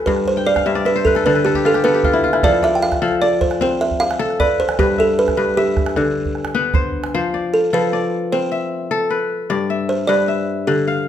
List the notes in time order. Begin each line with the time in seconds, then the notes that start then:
Already playing: F3 A4 B4
0.06 G2 B4, calabash thump
0.16 calabash click
0.28 C5
0.37 G5
0.46 D5 F5
0.56 F5, calabash thump, calabash click
0.66 G2 E5
0.75 D5, calabash click
0.85 B4 E5
0.96 C5
1.05 A4 B4, calabash thump
1.15 A4, calabash click
1.25 D3 A4 B4, calabash click
1.35 B4, calabash click
1.45 G4 A4
1.54 G4, calabash thump
1.65 F4 A4
1.74 G4, calabash click
1.84 B3 A4 B4
1.94 G4, calabash click
2.04 F4, calabash thump
2.13 E4
2.24 F4
2.33 E4, calabash click
2.43 F3 A4 D5, calabash thump
2.53 calabash click
2.63 D5 E5
2.75 G5
2.82 F5
2.92 calabash thump, calabash click
3.02 F3 A4
3.12 calabash click
3.22 D5
3.41 C5, calabash thump
3.51 calabash click
3.61 C4 C5, calabash click
3.71 calabash click
3.81 E5
3.91 calabash thump
4.00 F5
4.11 calabash click
4.19 A4
4.30 calabash click
4.40 B4 D5, calabash thump
4.60 C5
4.69 calabash click
4.79 G2 G4 B4, calabash thump
4.98 A4 E5
5.19 B4
5.28 calabash thump, calabash click
5.37 G2 B4
5.57 G4 E5
5.77 calabash thump, calabash click
5.86 calabash click
5.96 D3 D4, calabash click
6.25 calabash thump
6.35 calabash click
6.45 calabash click
6.55 B3 B4
6.74 C5, calabash thump
7.04 calabash click
7.14 F3 C5
7.34 D5
7.54 A4
7.73 F3 A4 B4
7.93 D5
8.32 C4 C5
8.52 E5
8.91 A4
9.10 B4
9.50 G2 D5
9.70 E5
9.89 C5
10.07 G2 B4 D5
10.28 E5
10.67 D3 G4
10.88 F5